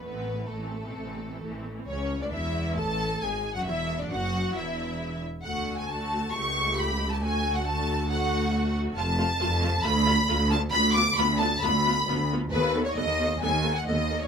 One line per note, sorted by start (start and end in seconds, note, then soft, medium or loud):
0.03 0.44 A1 medium
0.03 0.44 A2 soft
0.03 0.14 A3 soft
0.03 0.49 B3 medium
0.03 0.49 B4 medium
0.15 0.27 E3 soft
0.15 0.27 C4 soft
0.26 0.38 A3 soft
0.38 0.50 E3 soft
0.38 0.50 C4 soft
0.49 0.90 A1 soft
0.49 0.82 A2 soft
0.49 0.60 A3 soft
0.49 1.62 A3 soft
0.49 1.65 A4 medium
0.61 0.73 E3 soft
0.61 0.73 C4 soft
0.73 0.84 A3 soft
0.83 0.96 B2 soft
0.83 0.95 E3 soft
0.83 0.96 C4 soft
0.95 1.36 A1 medium
0.95 1.42 C3 soft
0.95 1.06 A3 soft
1.06 1.18 E3 soft
1.06 1.18 C4 soft
1.18 1.30 A3 soft
1.30 1.42 E3 soft
1.30 1.42 C4 soft
1.42 1.82 A1 medium
1.42 1.87 E3 soft
1.42 1.53 A3 soft
1.53 1.64 E3 soft
1.53 1.64 C4 soft
1.64 1.76 A3 soft
1.76 1.87 E3 soft
1.76 1.87 C4 soft
1.87 2.19 C#2 medium
1.87 2.19 C#4 medium
1.87 2.19 C#5 medium
2.20 2.33 D2 medium
2.20 2.32 D4 medium
2.20 2.32 D5 medium
2.20 2.26 D5 medium
2.32 2.77 E1 medium
2.32 2.77 E2 medium
2.32 2.77 E4 medium
2.32 2.76 E5 medium
2.32 2.77 E5 medium
2.76 3.22 A1 medium
2.76 3.22 A2 medium
2.76 3.22 A4 medium
2.76 3.20 A5 loud
2.76 3.21 A5 medium
3.21 3.54 G#1 medium
3.21 3.54 G#2 medium
3.21 3.55 G#4 medium
3.21 3.55 G#5 medium
3.55 3.66 F#2 medium
3.55 3.66 F#4 medium
3.55 3.66 F#5 medium
3.55 3.60 F#5 medium
3.65 4.00 E1 medium
3.65 4.00 E2 medium
3.65 3.99 E4 medium
3.65 3.98 E5 medium
3.65 3.99 E5 medium
4.00 4.11 D2 medium
4.00 4.11 D4 medium
4.00 4.11 D5 medium
4.00 4.12 D5 medium
4.10 4.55 F#1 medium
4.10 4.55 F#2 medium
4.10 4.55 F#4 medium
4.10 4.54 F#5 medium
4.10 4.56 F#5 medium
4.54 5.20 E1 medium
4.54 5.20 E2 medium
4.54 5.22 E4 medium
4.54 5.20 E5 medium
4.54 5.22 E5 medium
5.44 6.29 D2 medium
5.44 5.85 A3 medium
5.44 5.85 F#4 medium
5.44 5.75 F#5 medium
5.78 5.88 G#5 medium
5.78 5.89 G#5 medium
5.87 6.31 A3 medium
5.87 6.31 F#4 medium
5.87 6.33 A5 medium
6.33 7.21 C#2 medium
6.33 7.22 C#2 medium
6.33 7.20 A3 medium
6.33 7.20 G4 medium
6.33 6.77 C#6 loud
6.33 6.77 C#6 medium
6.78 7.11 B5 medium
7.10 7.21 A5 medium
7.10 7.17 A5 medium
7.21 8.98 D2 medium
7.21 7.64 A3 medium
7.21 7.64 F#4 medium
7.21 7.55 G#5 medium
7.21 7.54 G#5 loud
7.55 7.65 F#5 medium
7.55 7.66 F#5 medium
7.65 8.07 A3 medium
7.65 8.08 F#4 medium
7.65 8.09 A5 medium
7.65 8.10 A5 loud
8.09 8.95 A3 medium
8.09 8.96 F#4 medium
8.09 8.74 F#5 medium
8.09 8.75 F#5 loud
8.96 9.36 F1 loud
8.96 9.36 F2 medium
8.96 9.05 A3 medium
8.96 9.04 F4 medium
8.96 9.81 A5 medium
8.96 9.82 A5 loud
9.19 9.27 A3 medium
9.19 9.27 F4 medium
9.40 9.80 F1 medium
9.40 9.81 F2 medium
9.40 9.49 A3 medium
9.40 9.48 F4 medium
9.62 9.70 A3 medium
9.62 9.70 F4 medium
9.84 10.24 D2 loud
9.84 10.25 D2 loud
9.84 9.92 A3 medium
9.84 9.92 F4 medium
9.84 10.51 B5 loud
9.84 10.52 B5 loud
10.06 10.14 A3 medium
10.06 10.14 F4 medium
10.29 10.68 D2 loud
10.29 10.69 D2 loud
10.29 10.37 A3 medium
10.29 10.37 F4 medium
10.51 10.59 A3 medium
10.51 10.59 F4 medium
10.51 10.59 A5 medium
10.51 10.60 A5 loud
10.72 11.13 D2 medium
10.72 11.13 D2 loud
10.72 10.81 B3 medium
10.72 10.80 F4 medium
10.72 10.95 B5 loud
10.94 11.04 B3 medium
10.94 11.04 F4 medium
10.94 11.17 D6 loud
11.17 11.58 D2 medium
11.17 11.58 D2 loud
11.17 11.27 B3 medium
11.17 11.26 F4 medium
11.17 11.25 B5 loud
11.17 11.40 B5 loud
11.40 11.48 B3 medium
11.40 11.48 F4 medium
11.40 11.62 A5 loud
11.40 11.63 A5 loud
11.61 12.03 D2 loud
11.61 12.03 D2 medium
11.61 11.72 B3 medium
11.61 11.72 F4 medium
11.61 12.28 B5 loud
11.61 12.30 B5 loud
11.87 11.95 B3 medium
11.87 11.95 F4 medium
12.07 12.47 D2 loud
12.07 12.47 D2 medium
12.07 12.17 B3 medium
12.07 12.17 F4 medium
12.31 12.39 B3 medium
12.31 12.40 F4 medium
12.51 12.91 D#2 loud
12.51 12.92 D#2 medium
12.51 12.62 B3 medium
12.51 12.62 A4 medium
12.51 12.83 B4 loud
12.76 12.84 B3 medium
12.76 12.84 A4 medium
12.85 12.90 C#5 medium
12.85 12.97 C#5 medium
12.96 13.36 D#2 medium
12.96 13.37 D#2 medium
12.96 13.06 B3 medium
12.96 13.06 A4 medium
12.96 13.41 D#5 loud
12.96 13.40 D#5 loud
13.19 13.27 B3 medium
13.19 13.28 A4 medium
13.40 13.81 D#2 medium
13.40 13.82 D#2 loud
13.40 13.50 B3 medium
13.40 13.49 A4 medium
13.40 13.74 G#5 medium
13.40 13.75 G#5 loud
13.64 13.73 B3 medium
13.64 13.72 A4 medium
13.75 13.87 F#5 medium
13.75 13.88 F#5 medium
13.87 14.28 D#2 medium
13.87 13.96 B3 medium
13.87 13.96 A4 medium
13.87 14.21 D#5 medium
13.87 14.21 D#5 loud
14.10 14.18 B3 medium
14.10 14.18 A4 medium
14.20 14.28 C#5 medium